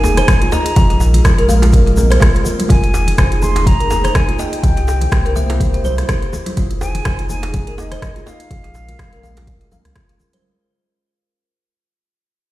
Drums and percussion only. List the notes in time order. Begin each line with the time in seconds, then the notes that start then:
0.03 djembe slap, djembe tone, high conga, shaker
0.17 cross-stick, closed hi-hat, mid tom, shaker
0.28 kick, cross-stick, closed hi-hat, djembe tone, shaker
0.42 closed hi-hat, high conga, shaker
0.52 djembe slap, djembe tone, shaker
0.66 closed hi-hat, shaker
0.76 kick, closed hi-hat, djembe tone, shaker
0.90 closed hi-hat, shaker
1.00 djembe slap, djembe tone, shaker
1.14 closed hi-hat, mid tom, shaker
1.25 kick, cross-stick, closed hi-hat, djembe tone, shaker
1.38 closed hi-hat, shaker
1.49 mid tom, djembe tone, high conga, shaker
1.62 closed hi-hat, djembe slap, shaker
1.72 kick, closed hi-hat, djembe tone, shaker
1.87 closed hi-hat, shaker
1.97 djembe tone, high conga, low conga, shaker
2.11 cross-stick, closed hi-hat, high conga, shaker
2.20 kick, cross-stick, closed hi-hat, djembe tone, shaker
2.35 closed hi-hat, shaker
2.45 mid tom, djembe tone, high conga, shaker
2.59 closed hi-hat, low conga, shaker
2.69 kick, closed hi-hat, djembe tone, shaker
2.83 closed hi-hat, shaker
2.94 djembe slap, djembe tone, shaker
3.08 closed hi-hat, mid tom, shaker
3.18 kick, cross-stick, closed hi-hat, djembe tone, shaker
3.31 closed hi-hat, shaker
3.42 mid tom, djembe tone, high conga, shaker
3.56 closed hi-hat, djembe slap, shaker
3.66 kick, closed hi-hat, high conga, djembe tone, shaker
3.80 closed hi-hat, shaker
3.91 djembe slap, high conga, djembe tone, shaker
4.05 cross-stick, closed hi-hat, mid tom, shaker
4.15 kick, cross-stick, closed hi-hat, djembe tone, shaker
4.29 closed hi-hat, high conga, shaker
4.39 djembe slap, djembe tone, shaker
4.53 closed hi-hat, shaker
4.63 kick, closed hi-hat, djembe tone, shaker
4.77 closed hi-hat, shaker
4.88 djembe slap, djembe tone, shaker
5.01 closed hi-hat, mid tom, shaker
5.12 kick, cross-stick, closed hi-hat, djembe tone, shaker
5.26 closed hi-hat, shaker
5.36 mid tom, djembe tone, high conga, shaker
5.50 closed hi-hat, djembe slap, shaker
5.60 kick, closed hi-hat, djembe tone, shaker
5.74 closed hi-hat, shaker
5.84 djembe tone, high conga, low conga, shaker
5.98 cross-stick, closed hi-hat, high conga, shaker
6.08 kick, cross-stick, closed hi-hat, djembe tone, shaker
6.22 closed hi-hat, shaker
6.33 mid tom, high conga, djembe tone, shaker
6.46 closed hi-hat, low conga, shaker
6.57 kick, closed hi-hat, djembe tone, shaker
6.71 closed hi-hat, shaker
6.81 djembe slap, djembe tone, shaker
6.95 closed hi-hat, mid tom, shaker
7.05 kick, cross-stick, closed hi-hat, djembe tone, shaker
7.19 closed hi-hat, shaker
7.29 mid tom, djembe tone, high conga, shaker
7.43 closed hi-hat, djembe slap, shaker
7.53 kick, closed hi-hat, djembe tone, high conga, shaker
7.67 closed hi-hat, shaker
7.78 djembe slap, high conga, djembe tone, shaker
7.92 cross-stick, closed hi-hat, mid tom, shaker
8.02 kick, cross-stick, closed hi-hat, djembe tone, shaker
8.16 closed hi-hat, high conga, shaker
8.26 djembe slap, djembe tone, shaker
8.40 closed hi-hat, shaker
8.51 kick, closed hi-hat, djembe tone, shaker
8.64 closed hi-hat, shaker
8.74 djembe slap, djembe tone, shaker
8.89 closed hi-hat, mid tom, high conga, shaker
8.99 kick, cross-stick, closed hi-hat, djembe tone, shaker
9.13 closed hi-hat, shaker
9.22 mid tom, high conga, djembe tone, shaker
9.37 closed hi-hat, djembe slap, low conga, shaker
9.47 kick, closed hi-hat, djembe tone, shaker
9.61 closed hi-hat, shaker
9.71 djembe tone, high conga, low conga, shaker
9.85 cross-stick, closed hi-hat, high conga, shaker
9.96 kick, cross-stick, closed hi-hat, djembe tone, shaker
10.09 closed hi-hat, shaker
10.20 mid tom, djembe tone, shaker
10.33 closed hi-hat, low conga, shaker